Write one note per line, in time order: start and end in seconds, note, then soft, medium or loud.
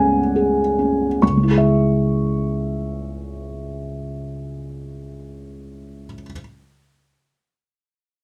0.00 1.18 C#2 soft
0.00 1.24 G#3 soft
0.00 0.79 C#4 soft
0.00 0.18 G#4 soft
0.00 1.25 F#5 medium
0.00 1.18 G#5 medium
0.36 1.05 G#4 soft
0.79 1.22 C#4 soft
1.22 6.05 C#2 soft
1.22 6.05 C#6 soft
1.30 6.12 C#3 soft
1.37 6.20 G#3 soft
1.43 6.26 E4 soft
1.51 6.34 G#4 soft
1.58 6.40 E5 soft